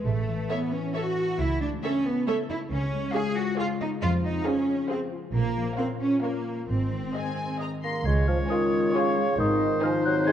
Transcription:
Already playing: E4
0.05 A1 A2 A3
0.28 E3
0.50 B3 E4 A4 C#5 E5
0.73 C#4 C#5
0.94 F#4 A4 C#5 E5
1.17 C#4
1.38 C#2 C#3 E4
1.61 A3 D4
1.83 C#4 E4 A4 C#5 E5
2.05 B3 C#5
2.27 A3 A4 C#5 E5
2.49 C#4 E4
2.71 C#2 C#3 C#4
2.92 G#3
3.14 F4 G#4 C#5 F5
3.36 F#4 C#5
3.58 F4 G#4 C#5 F5
3.79 C#4 D#4
4.01 F2 F3 F4
4.23 C4 D#4
4.45 C#4 G#4 C5 F5
4.67 F5
4.90 C4 G#4 C5 F5
5.12 F4
5.34 A#1 A#2 A#3
5.56 F3
5.77 C4 F4 A#4 C#5 F5
6.00 C#4 C#5
6.22 A#3 A#4 C#5 F5
6.46 C#4
6.68 G#1 G#2 C4
6.91 D#3
7.14 G#4 D#5 G#5
7.37 D#5
7.60 G#4 D#5 A#5
7.83 A#3 D#4 C6 A#6
8.05 C#2 C#3 G#3 C#4 F4 C#5 G#6
8.28 F3 G#3 F6
8.50 D#3 F4 G#4 C#5 G#5 D#6
8.73 F4
8.94 C#3 F4 G#4 C#5 F5 G#5 C#6
9.17 G#3
9.38 G#1 G#2 D#3 C4 D#4 C5 D#5 D#6
9.61 D#3
9.82 F3 D#4 G#4 C5 G#5 F6
10.05 F#3 D#4 F#6
10.27 G#3 D#4 G#4 C5 G#5 G#6

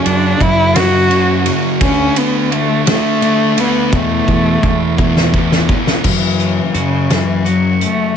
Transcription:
Already playing: F#2 C#3 F#3
0.06 F#2 D4, ride
0.40 F#2 E4, kick, ride
0.74 F#2 C#3 F#3 F#4, snare, ride
1.10 F#2 C#3 F#3, ride
1.45 F#2 C#3 F#3, ride
1.81 D2 D3 A3 C#4 D4, kick, ride
2.16 B3, ride
2.52 A3, ride
2.86 D3 A3 D4, snare, ride
3.21 D3 A3 D4, ride
3.56 D3 A3 B3 D4, ride
3.91 E2 B2 E3, kick
3.96 A3
4.28 E2, kick
4.63 E2, kick
4.97 E2 B2 E3, kick
5.01 A3
5.17 snare
5.32 E2 B2 E3, kick
5.52 snare
5.68 E2 B2 E3, kick
5.87 snare
6.03 F#2 C#3 E3 F#3, kick, crash
6.40 A3, closed hi-hat
6.74 F#2 C#3 F#3 F#4, closed hi-hat
7.09 F#2 C#3 E3 F#3 C#4, snare, closed hi-hat
7.44 F#2 C#3 F#3 F#4, closed hi-hat
7.80 A3 C#4, closed hi-hat

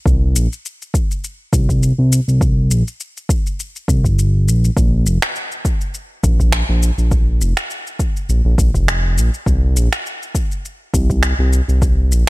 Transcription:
0.06 C2, kick, shaker
0.35 A#1, shaker
0.53 shaker
0.66 shaker
0.82 shaker
0.94 kick, shaker
1.11 shaker
1.24 shaker
1.53 C2, kick, shaker
1.69 kick, shaker
1.83 shaker
1.99 C2
2.12 shaker
2.28 C2, shaker
2.41 kick, shaker
2.71 A#1, shaker
2.88 shaker
3.00 shaker
3.17 shaker
3.29 kick, shaker
3.46 shaker
3.60 shaker
3.76 shaker
3.88 C2, kick, shaker
4.04 G1, kick, shaker
4.19 shaker
4.47 A#1, shaker
4.64 shaker
4.77 A#1, kick, shaker
5.06 F1, shaker
5.22 finger snap, shaker
5.36 shaker
5.52 shaker
5.65 kick, shaker
5.81 shaker
5.94 shaker
6.23 A#1, kick, shaker
6.40 kick, shaker
6.52 finger snap, shaker
6.69 A#1
6.83 shaker
6.98 A#1, shaker
7.11 kick, shaker
7.41 F1, shaker
7.57 finger snap, shaker
7.70 shaker
7.87 shaker
7.99 kick, shaker
8.17 shaker
8.29 A#1, shaker
8.45 A#1
8.58 A#1, kick, shaker
8.74 F1, kick, shaker
8.88 finger snap, shaker
9.17 A#1, shaker
9.34 shaker
9.46 C2, kick, shaker
9.76 A#1, shaker
9.93 finger snap, shaker
10.06 shaker
10.23 shaker
10.35 kick, shaker
10.51 shaker
10.65 shaker
10.94 C2, kick, shaker
11.10 kick, shaker
11.23 finger snap, shaker
11.39 C2
11.53 shaker
11.68 C2, shaker
11.82 kick, shaker
12.12 A#1, shaker

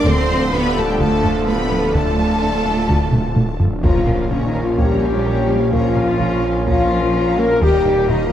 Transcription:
0.05 D1 D2 D3 F3 A3 C4 D4 F4 A4 C5 C6, taiko
0.29 D2 F3
0.53 D2 B3 D4 G4 B4 B5
0.77 D2 A3 A4 A5
0.88 G3 G4 G5
1.00 D2 D3 A3 A4 A5, taiko
1.24 D2 A3, taiko low
1.47 D2 A3 B3 G4 B4 B5
1.71 D2 F3
1.94 D2 D3 A3 F4 A4 A5, taiko
2.18 D2 F3
2.42 D2 D4
2.65 D2 A3
2.89 D2 D3, taiko
3.12 D2 A3, taiko low-mid
3.36 D2 A3, taiko low-mid
3.60 D2 F3, taiko low
3.82 A#1 F3 A#3 C#4 F4 C#5 A#5, taiko, impact
4.07 A#3 A#4 F5, taiko low-mid
4.30 C#3 C#4 F4 C#5 A#5, taiko low-mid
4.47 D#3 D#4
4.54 A#3 A#4 F5
4.62 F3 F4
4.78 G3 A#3 C#4 G4 C#5 A#5, taiko
5.01 A#3 F4 A#4 F5
5.24 C#4 A#4 C#5 A#5
5.48 A#3 C#4 A#4 F5
5.72 F3 A#3 C#4 F4 C#5 A#5, taiko
5.96 A#3 A#4 F5, taiko low-mid
6.20 C#4 F4 C#5 A#5, taiko low-mid
6.44 A#3 A#4 F5
6.67 F3 A#3 C#4 F4 C#5 A#5, taiko
6.91 A#3 F4 A#4 F5
7.14 C#4 A#4 C#5 A#5
7.38 A#3 C#4 A#4 F5
7.61 D#1 D#2 D#3 G3 A#3 D#4 G4 A#4 D#5 A#5, taiko
7.85 A#3 D#4 A#4 G5, taiko low-mid
8.08 D#3 G3 A#3 D#4 D#5 A#5, taiko low-mid
8.25 F3 F4

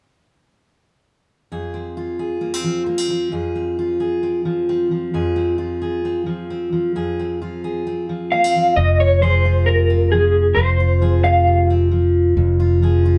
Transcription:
1.52 F2 G#4
1.74 C4
1.97 F4
2.19 G#4
2.41 A#3
2.54 C4
2.64 F3
2.86 A#3
2.98 C4
3.10 F3
3.32 F2 G#4
3.55 C4
3.79 F4
4.00 G#4
4.23 C4
4.45 F3
4.69 C4
4.91 F3
5.14 F2 G#4
5.36 C4
5.58 F4
5.82 G#4
6.05 C4
6.26 F3
6.50 C4
6.73 F3
6.95 F2 G#4
7.19 C4
7.42 F4
7.64 G#4
7.87 C4
8.09 F3
8.32 A#3 F5
8.44 C4
8.56 F3
8.76 F1 F2 D#5
9.00 F4 C#5
9.22 F3 G#4 C5
9.45 F4
9.66 C3 A#4
9.90 C4
10.12 F3 G#4
10.55 F1 F2 C5
10.80 F4
11.01 F3 G#4
11.24 F4 F5
11.47 C3
11.70 C4
11.91 F3
12.37 F1 F2
12.60 F4
12.82 F3 G#4
13.06 F4

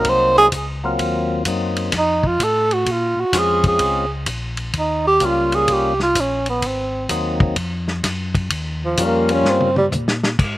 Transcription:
Already playing: F#3 A#3 C4 D#4 A#4
0.05 C2, kick, ride
0.09 C5
0.37 G#4, snare
0.52 C#2, kick, hi-hat pedal, ride
0.84 F#3 A#3 C4 F4
0.99 D#2, kick, ride
1.45 F#2 F#3 A#3 C4 D#4, kick, hi-hat pedal, ride
1.76 ride
1.92 F2, kick, snare, ride
1.98 D#4
2.23 F4, kick
2.39 A2, kick, hi-hat pedal, ride
2.44 A4
2.71 F#4, ride
2.86 A#2, kick, ride
2.92 F4
3.16 A#2 F#4
3.32 F2 G#3 C4 C#4 F4, kick, snare, hi-hat pedal, ride
3.38 G#4
3.64 G#4, kick, ride
3.79 C#2, kick, ride
4.26 A#1, kick, hi-hat pedal, ride
4.57 ride
4.73 D#2, kick, ride
4.79 D#4
5.07 G4
5.20 C#2 G3 A#3 C#4 F4, kick, hi-hat pedal, ride
5.25 F4
5.52 G#4, ride
5.67 C2, kick, ride
5.73 G4
6.00 F4, snare
6.15 A#1, kick, hi-hat pedal, ride
6.20 C#4
6.46 B3, ride
6.62 G#1, kick, ride
6.67 C4
7.09 D#2 F#3 A#3 C4 D#4, kick, hi-hat pedal, ride
7.40 kick
7.56 F2, kick, ride
7.88 snare
8.03 F#2, kick, snare, hi-hat pedal, ride
8.35 kick, ride
8.50 D#2, kick, ride
8.85 F3
8.97 F2 G3 A#3 C#4 F4, kick, hi-hat pedal, ride
9.03 A#3
9.29 C#4, ride
9.43 G2, snare
9.49 C4
9.61 high tom
9.76 G3, high tom
9.91 A#2, floor tom, hi-hat pedal
10.08 snare
10.23 snare
10.39 G#2, kick, crash

